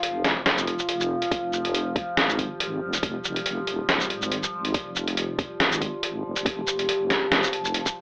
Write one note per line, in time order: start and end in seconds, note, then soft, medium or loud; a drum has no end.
0.00 1.30 F1 loud
0.00 8.01 F3 medium
0.00 1.34 F4 medium
0.00 closed hi-hat medium
0.25 snare medium
0.25 closed hi-hat medium
0.46 snare loud
0.46 closed hi-hat medium
0.58 shaker soft
0.67 closed hi-hat medium
0.79 shaker soft
0.89 closed hi-hat medium
1.00 shaker medium
1.22 closed hi-hat medium
1.32 2.16 F1 loud
1.32 8.01 G3 medium
1.32 kick loud
1.32 closed hi-hat medium
1.53 shaker soft
1.65 closed hi-hat medium
1.75 closed hi-hat medium
1.96 kick loud
1.96 closed hi-hat soft
2.17 2.80 G#1 medium
2.17 snare loud
2.17 closed hi-hat medium
2.29 shaker soft
2.39 kick medium
2.39 closed hi-hat medium
2.60 closed hi-hat medium
2.82 4.09 F1 loud
2.93 closed hi-hat soft
2.93 shaker medium
3.03 kick loud
3.03 closed hi-hat medium
3.24 shaker soft
3.36 closed hi-hat soft
3.46 closed hi-hat medium
3.67 closed hi-hat soft
3.89 snare loud
3.89 closed hi-hat medium
4.00 shaker medium
4.10 4.73 G#1 medium
4.10 closed hi-hat medium
4.22 shaker medium
4.32 closed hi-hat medium
4.43 shaker medium
4.65 closed hi-hat soft
4.74 5.59 F1 loud
4.74 kick loud
4.74 closed hi-hat medium
4.96 shaker medium
5.08 closed hi-hat medium
5.17 closed hi-hat medium
5.39 kick loud
5.39 closed hi-hat medium
5.60 6.23 G#1 medium
5.60 snare loud
5.60 closed hi-hat medium
5.72 shaker medium
5.81 kick medium
5.81 closed hi-hat medium
6.03 closed hi-hat medium
6.24 6.66 F1 loud
6.36 closed hi-hat soft
6.36 shaker medium
6.46 kick loud
6.46 closed hi-hat medium
6.67 7.51 F1 loud
6.67 shaker medium
6.79 closed hi-hat medium
6.89 closed hi-hat medium
7.10 snare medium
7.10 closed hi-hat medium
7.32 snare loud
7.32 closed hi-hat medium
7.43 shaker medium
7.53 8.01 F1 medium
7.53 closed hi-hat medium
7.65 shaker medium
7.74 closed hi-hat medium
7.86 kick medium
7.86 shaker medium